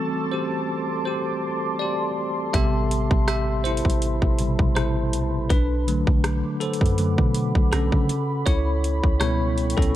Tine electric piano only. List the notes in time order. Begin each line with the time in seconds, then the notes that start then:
Already playing: E3 G3 A3 C4 F#4 A4
0.32 G4 C5
1.05 G4 C5
1.79 G4 D5
2.53 C3 G3 B3 G4 E5
3.28 G4 E5
3.64 E4 C5
4.39 B2 C3 G3
4.75 E4 C5
5.50 D4 B4
5.87 D3 F#3 A3
6.60 A4 C5
6.98 D3 F#3 A3
7.72 C#4 A4
8.46 E4 C#5
9.20 B2 G3 B3 E4 C#5
9.77 C#4 A4